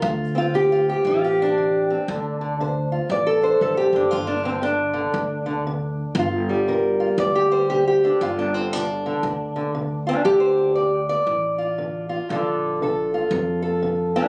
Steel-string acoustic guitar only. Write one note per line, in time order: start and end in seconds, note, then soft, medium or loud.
0.03 0.50 D2 medium
0.03 0.37 F4 soft
0.35 1.88 C4 soft
0.35 0.71 F4 medium
0.54 1.02 D3 medium
0.54 0.88 G4 medium
0.72 1.06 F4 medium
0.89 1.23 G4 medium
1.07 1.54 A2 medium
1.07 1.41 F4 medium
1.24 1.92 G4 medium
1.42 2.91 D4 medium
1.58 2.05 D3 medium
1.90 2.07 C4 soft
2.09 2.56 D2 medium
2.09 2.40 D3 soft
2.41 2.59 D3 soft
2.60 3.07 D3 medium
2.60 3.11 C5 soft
2.92 3.26 F4 soft
3.11 3.58 A2 medium
3.11 3.43 D5 medium
3.27 3.61 A4 medium
3.42 3.95 D4 soft
3.42 4.12 C5 medium
3.62 3.92 D3 medium
3.62 3.77 A4 medium
3.77 4.11 G4 medium
3.93 4.42 D3 soft
3.93 4.13 D4 medium
4.11 4.60 G2 medium
4.11 4.80 F4 medium
4.27 4.45 D4 medium
4.43 4.60 D3 soft
4.43 4.62 C4 medium
4.62 4.92 D3 medium
4.62 6.17 D4 medium
4.94 5.13 D3 soft
5.14 5.45 D3 medium
5.46 5.66 D3 soft
5.67 6.14 D3 medium
6.18 6.65 D2 medium
6.18 7.00 F4 soft
6.49 7.50 G3 soft
6.68 7.15 D3 medium
6.68 7.19 A#4 soft
7.00 7.35 F4 soft
7.19 7.66 D2 medium
7.19 7.51 D5 medium
7.35 7.69 G4 medium
7.51 8.04 G3 soft
7.51 8.21 C5 medium
7.70 8.01 D3 medium
7.70 7.86 G4 medium
7.88 8.22 G4 medium
8.03 8.53 D3 soft
8.03 8.38 D4 medium
8.22 8.69 G2 medium
8.22 8.90 F4 medium
8.39 8.54 D4 medium
8.54 8.74 D3 soft
8.54 8.73 C4 medium
8.73 9.05 D3 medium
8.73 10.07 D4 medium
9.06 9.23 D3 soft
9.25 9.55 D3 medium
9.56 9.73 D3 soft
9.75 10.22 D3 medium
10.07 10.25 D4 medium
10.07 10.25 F4 soft
10.25 10.72 D2 medium
10.25 10.76 D3 soft
10.25 10.57 D4 soft
10.25 10.93 G4 medium
10.40 10.75 C5 medium
10.57 12.28 D4 soft
10.76 11.24 D3 medium
10.76 11.08 D5 medium
11.09 12.29 D5 medium
11.26 11.74 A2 medium
11.58 12.08 F4 soft
11.78 12.26 D3 medium
12.09 12.27 F4 soft
12.29 12.77 A#2 medium
12.29 12.81 D3 soft
12.29 14.15 D4 soft
12.29 13.13 F4 soft
12.29 12.83 A4 soft
12.82 13.29 D3 medium
12.82 13.62 A4 soft
13.14 14.14 F4 soft
13.32 13.79 F3 medium
13.62 14.28 A4 soft
13.82 14.28 D3 medium
14.16 14.28 D4 medium
14.16 14.28 F4 soft